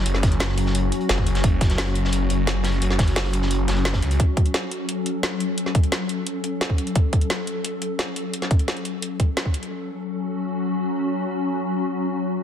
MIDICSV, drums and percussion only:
0, 0, Header, 1, 2, 480
1, 0, Start_track
1, 0, Key_signature, 3, "minor"
1, 0, Tempo, 344828
1, 81, Time_signature, 4, 2, 24, 8
1, 17304, End_track
2, 0, Start_track
2, 0, Title_t, "Drums"
2, 81, Note_on_c, 9, 42, 94
2, 84, Note_off_c, 9, 42, 0
2, 84, Note_on_c, 9, 42, 92
2, 201, Note_off_c, 9, 42, 0
2, 201, Note_on_c, 9, 42, 41
2, 202, Note_on_c, 9, 38, 38
2, 319, Note_off_c, 9, 38, 0
2, 319, Note_on_c, 9, 38, 49
2, 322, Note_off_c, 9, 42, 0
2, 322, Note_on_c, 9, 36, 113
2, 322, Note_on_c, 9, 42, 67
2, 442, Note_off_c, 9, 42, 0
2, 442, Note_on_c, 9, 42, 38
2, 459, Note_off_c, 9, 38, 0
2, 461, Note_off_c, 9, 36, 0
2, 552, Note_off_c, 9, 42, 0
2, 552, Note_on_c, 9, 42, 91
2, 557, Note_on_c, 9, 38, 114
2, 562, Note_off_c, 9, 38, 0
2, 562, Note_off_c, 9, 42, 0
2, 562, Note_on_c, 9, 38, 127
2, 562, Note_on_c, 9, 42, 93
2, 680, Note_off_c, 9, 38, 0
2, 680, Note_on_c, 9, 38, 42
2, 701, Note_off_c, 9, 42, 0
2, 801, Note_on_c, 9, 42, 66
2, 802, Note_off_c, 9, 42, 0
2, 802, Note_on_c, 9, 42, 66
2, 819, Note_off_c, 9, 38, 0
2, 922, Note_on_c, 9, 38, 43
2, 941, Note_off_c, 9, 42, 0
2, 1042, Note_on_c, 9, 42, 96
2, 1043, Note_off_c, 9, 42, 0
2, 1043, Note_on_c, 9, 42, 94
2, 1062, Note_off_c, 9, 38, 0
2, 1182, Note_off_c, 9, 42, 0
2, 1282, Note_on_c, 9, 42, 65
2, 1285, Note_off_c, 9, 42, 0
2, 1285, Note_on_c, 9, 42, 62
2, 1401, Note_off_c, 9, 42, 0
2, 1401, Note_on_c, 9, 42, 40
2, 1520, Note_off_c, 9, 42, 0
2, 1520, Note_on_c, 9, 42, 90
2, 1522, Note_off_c, 9, 42, 0
2, 1522, Note_on_c, 9, 38, 121
2, 1522, Note_on_c, 9, 42, 89
2, 1642, Note_on_c, 9, 36, 65
2, 1662, Note_off_c, 9, 38, 0
2, 1662, Note_off_c, 9, 42, 0
2, 1762, Note_on_c, 9, 42, 65
2, 1764, Note_off_c, 9, 42, 0
2, 1764, Note_on_c, 9, 42, 70
2, 1781, Note_off_c, 9, 36, 0
2, 1882, Note_off_c, 9, 42, 0
2, 1882, Note_on_c, 9, 42, 38
2, 1884, Note_on_c, 9, 38, 56
2, 2002, Note_off_c, 9, 42, 0
2, 2002, Note_on_c, 9, 36, 124
2, 2002, Note_on_c, 9, 42, 92
2, 2003, Note_off_c, 9, 42, 0
2, 2003, Note_on_c, 9, 42, 90
2, 2023, Note_off_c, 9, 38, 0
2, 2142, Note_off_c, 9, 36, 0
2, 2142, Note_off_c, 9, 42, 0
2, 2242, Note_on_c, 9, 42, 64
2, 2243, Note_on_c, 9, 36, 111
2, 2247, Note_off_c, 9, 42, 0
2, 2247, Note_on_c, 9, 42, 65
2, 2251, Note_on_c, 9, 38, 49
2, 2362, Note_off_c, 9, 42, 0
2, 2362, Note_on_c, 9, 42, 36
2, 2365, Note_off_c, 9, 38, 0
2, 2365, Note_on_c, 9, 38, 48
2, 2382, Note_off_c, 9, 36, 0
2, 2475, Note_off_c, 9, 38, 0
2, 2475, Note_on_c, 9, 38, 116
2, 2482, Note_off_c, 9, 38, 0
2, 2482, Note_off_c, 9, 42, 0
2, 2482, Note_on_c, 9, 38, 127
2, 2482, Note_on_c, 9, 42, 90
2, 2490, Note_on_c, 9, 46, 84
2, 2602, Note_off_c, 9, 42, 0
2, 2602, Note_on_c, 9, 42, 42
2, 2621, Note_off_c, 9, 38, 0
2, 2630, Note_off_c, 9, 46, 0
2, 2716, Note_off_c, 9, 42, 0
2, 2716, Note_on_c, 9, 42, 69
2, 2721, Note_off_c, 9, 42, 0
2, 2721, Note_on_c, 9, 42, 64
2, 2850, Note_on_c, 9, 38, 51
2, 2861, Note_off_c, 9, 42, 0
2, 2955, Note_on_c, 9, 42, 92
2, 2961, Note_off_c, 9, 42, 0
2, 2961, Note_on_c, 9, 42, 89
2, 2989, Note_off_c, 9, 38, 0
2, 3101, Note_off_c, 9, 42, 0
2, 3201, Note_on_c, 9, 42, 76
2, 3202, Note_off_c, 9, 42, 0
2, 3202, Note_on_c, 9, 42, 61
2, 3342, Note_off_c, 9, 42, 0
2, 3442, Note_on_c, 9, 38, 123
2, 3442, Note_on_c, 9, 42, 86
2, 3444, Note_off_c, 9, 42, 0
2, 3444, Note_on_c, 9, 42, 61
2, 3582, Note_off_c, 9, 38, 0
2, 3583, Note_off_c, 9, 42, 0
2, 3671, Note_on_c, 9, 38, 113
2, 3682, Note_on_c, 9, 42, 63
2, 3687, Note_off_c, 9, 42, 0
2, 3687, Note_on_c, 9, 42, 78
2, 3790, Note_off_c, 9, 42, 0
2, 3790, Note_on_c, 9, 42, 43
2, 3810, Note_off_c, 9, 38, 0
2, 3923, Note_off_c, 9, 42, 0
2, 3923, Note_on_c, 9, 42, 86
2, 3928, Note_off_c, 9, 42, 0
2, 3928, Note_on_c, 9, 42, 91
2, 4044, Note_on_c, 9, 38, 37
2, 4045, Note_off_c, 9, 42, 0
2, 4045, Note_on_c, 9, 42, 45
2, 4155, Note_off_c, 9, 38, 0
2, 4155, Note_on_c, 9, 38, 96
2, 4162, Note_off_c, 9, 42, 0
2, 4162, Note_on_c, 9, 42, 62
2, 4163, Note_on_c, 9, 36, 107
2, 4166, Note_on_c, 9, 46, 75
2, 4282, Note_off_c, 9, 42, 0
2, 4282, Note_on_c, 9, 42, 35
2, 4294, Note_off_c, 9, 38, 0
2, 4302, Note_off_c, 9, 36, 0
2, 4305, Note_off_c, 9, 46, 0
2, 4400, Note_on_c, 9, 38, 107
2, 4401, Note_off_c, 9, 38, 0
2, 4401, Note_off_c, 9, 42, 0
2, 4401, Note_on_c, 9, 38, 124
2, 4401, Note_on_c, 9, 42, 88
2, 4518, Note_off_c, 9, 38, 0
2, 4518, Note_on_c, 9, 38, 39
2, 4541, Note_off_c, 9, 42, 0
2, 4642, Note_on_c, 9, 42, 64
2, 4644, Note_off_c, 9, 42, 0
2, 4644, Note_on_c, 9, 42, 68
2, 4657, Note_off_c, 9, 38, 0
2, 4762, Note_on_c, 9, 38, 42
2, 4783, Note_off_c, 9, 42, 0
2, 4882, Note_on_c, 9, 42, 85
2, 4892, Note_off_c, 9, 42, 0
2, 4892, Note_on_c, 9, 42, 85
2, 4901, Note_off_c, 9, 38, 0
2, 5031, Note_off_c, 9, 42, 0
2, 5123, Note_on_c, 9, 42, 61
2, 5124, Note_off_c, 9, 42, 0
2, 5124, Note_on_c, 9, 42, 79
2, 5125, Note_on_c, 9, 38, 98
2, 5241, Note_off_c, 9, 42, 0
2, 5241, Note_on_c, 9, 42, 39
2, 5264, Note_off_c, 9, 38, 0
2, 5358, Note_off_c, 9, 42, 0
2, 5358, Note_on_c, 9, 42, 64
2, 5362, Note_off_c, 9, 42, 0
2, 5362, Note_on_c, 9, 38, 121
2, 5362, Note_on_c, 9, 42, 85
2, 5470, Note_off_c, 9, 38, 0
2, 5470, Note_on_c, 9, 38, 102
2, 5480, Note_off_c, 9, 42, 0
2, 5480, Note_on_c, 9, 42, 73
2, 5483, Note_on_c, 9, 36, 63
2, 5603, Note_off_c, 9, 42, 0
2, 5603, Note_on_c, 9, 42, 61
2, 5609, Note_off_c, 9, 38, 0
2, 5611, Note_off_c, 9, 42, 0
2, 5611, Note_on_c, 9, 42, 38
2, 5622, Note_off_c, 9, 36, 0
2, 5722, Note_off_c, 9, 42, 0
2, 5722, Note_on_c, 9, 42, 35
2, 5723, Note_off_c, 9, 42, 0
2, 5723, Note_on_c, 9, 42, 57
2, 5842, Note_on_c, 9, 36, 116
2, 5843, Note_off_c, 9, 42, 0
2, 5843, Note_on_c, 9, 42, 86
2, 5982, Note_off_c, 9, 36, 0
2, 5982, Note_off_c, 9, 42, 0
2, 6083, Note_on_c, 9, 36, 106
2, 6083, Note_on_c, 9, 42, 61
2, 6203, Note_off_c, 9, 42, 0
2, 6203, Note_on_c, 9, 42, 35
2, 6222, Note_off_c, 9, 36, 0
2, 6322, Note_off_c, 9, 42, 0
2, 6322, Note_on_c, 9, 38, 122
2, 6322, Note_on_c, 9, 42, 91
2, 6462, Note_off_c, 9, 38, 0
2, 6462, Note_off_c, 9, 42, 0
2, 6563, Note_on_c, 9, 42, 61
2, 6702, Note_off_c, 9, 42, 0
2, 6803, Note_on_c, 9, 42, 88
2, 6942, Note_off_c, 9, 42, 0
2, 7043, Note_on_c, 9, 42, 59
2, 7182, Note_off_c, 9, 42, 0
2, 7283, Note_on_c, 9, 38, 112
2, 7283, Note_on_c, 9, 42, 85
2, 7422, Note_off_c, 9, 38, 0
2, 7422, Note_off_c, 9, 42, 0
2, 7522, Note_on_c, 9, 42, 61
2, 7662, Note_off_c, 9, 42, 0
2, 7763, Note_on_c, 9, 42, 87
2, 7882, Note_on_c, 9, 38, 34
2, 7902, Note_off_c, 9, 42, 0
2, 8002, Note_on_c, 9, 42, 64
2, 8003, Note_on_c, 9, 36, 103
2, 8022, Note_off_c, 9, 38, 0
2, 8122, Note_off_c, 9, 42, 0
2, 8122, Note_on_c, 9, 42, 36
2, 8142, Note_off_c, 9, 36, 0
2, 8241, Note_off_c, 9, 42, 0
2, 8241, Note_on_c, 9, 38, 112
2, 8241, Note_on_c, 9, 42, 90
2, 8381, Note_off_c, 9, 38, 0
2, 8381, Note_off_c, 9, 42, 0
2, 8481, Note_on_c, 9, 42, 64
2, 8620, Note_off_c, 9, 42, 0
2, 8721, Note_on_c, 9, 42, 91
2, 8860, Note_off_c, 9, 42, 0
2, 8962, Note_on_c, 9, 42, 61
2, 9101, Note_off_c, 9, 42, 0
2, 9202, Note_on_c, 9, 38, 108
2, 9202, Note_on_c, 9, 42, 90
2, 9323, Note_on_c, 9, 36, 59
2, 9342, Note_off_c, 9, 38, 0
2, 9342, Note_off_c, 9, 42, 0
2, 9442, Note_on_c, 9, 42, 62
2, 9462, Note_off_c, 9, 36, 0
2, 9562, Note_off_c, 9, 42, 0
2, 9562, Note_on_c, 9, 42, 36
2, 9681, Note_off_c, 9, 42, 0
2, 9681, Note_on_c, 9, 42, 92
2, 9683, Note_on_c, 9, 36, 113
2, 9821, Note_off_c, 9, 42, 0
2, 9822, Note_off_c, 9, 36, 0
2, 9922, Note_on_c, 9, 42, 68
2, 9923, Note_on_c, 9, 36, 100
2, 10042, Note_off_c, 9, 42, 0
2, 10042, Note_on_c, 9, 42, 39
2, 10062, Note_off_c, 9, 36, 0
2, 10162, Note_off_c, 9, 42, 0
2, 10162, Note_on_c, 9, 38, 111
2, 10162, Note_on_c, 9, 42, 92
2, 10301, Note_off_c, 9, 38, 0
2, 10301, Note_off_c, 9, 42, 0
2, 10402, Note_on_c, 9, 42, 66
2, 10541, Note_off_c, 9, 42, 0
2, 10642, Note_on_c, 9, 42, 93
2, 10781, Note_off_c, 9, 42, 0
2, 10882, Note_on_c, 9, 42, 63
2, 11021, Note_off_c, 9, 42, 0
2, 11122, Note_on_c, 9, 38, 110
2, 11122, Note_on_c, 9, 42, 89
2, 11261, Note_off_c, 9, 38, 0
2, 11261, Note_off_c, 9, 42, 0
2, 11362, Note_on_c, 9, 42, 65
2, 11501, Note_off_c, 9, 42, 0
2, 11603, Note_on_c, 9, 42, 96
2, 11723, Note_off_c, 9, 42, 0
2, 11723, Note_on_c, 9, 38, 34
2, 11723, Note_on_c, 9, 42, 37
2, 11842, Note_off_c, 9, 42, 0
2, 11842, Note_on_c, 9, 42, 67
2, 11843, Note_on_c, 9, 36, 101
2, 11862, Note_off_c, 9, 38, 0
2, 11962, Note_off_c, 9, 42, 0
2, 11962, Note_on_c, 9, 42, 38
2, 11982, Note_off_c, 9, 36, 0
2, 12082, Note_off_c, 9, 42, 0
2, 12082, Note_on_c, 9, 38, 111
2, 12082, Note_on_c, 9, 42, 93
2, 12203, Note_off_c, 9, 42, 0
2, 12203, Note_on_c, 9, 42, 37
2, 12222, Note_off_c, 9, 38, 0
2, 12321, Note_off_c, 9, 42, 0
2, 12321, Note_on_c, 9, 42, 66
2, 12461, Note_off_c, 9, 42, 0
2, 12562, Note_on_c, 9, 42, 98
2, 12701, Note_off_c, 9, 42, 0
2, 12802, Note_on_c, 9, 42, 66
2, 12803, Note_on_c, 9, 36, 60
2, 12941, Note_off_c, 9, 42, 0
2, 12942, Note_off_c, 9, 36, 0
2, 13042, Note_on_c, 9, 38, 107
2, 13042, Note_on_c, 9, 42, 94
2, 13162, Note_on_c, 9, 36, 57
2, 13181, Note_off_c, 9, 38, 0
2, 13181, Note_off_c, 9, 42, 0
2, 13281, Note_on_c, 9, 42, 67
2, 13302, Note_off_c, 9, 36, 0
2, 13401, Note_off_c, 9, 42, 0
2, 13401, Note_on_c, 9, 42, 38
2, 13540, Note_off_c, 9, 42, 0
2, 17304, End_track
0, 0, End_of_file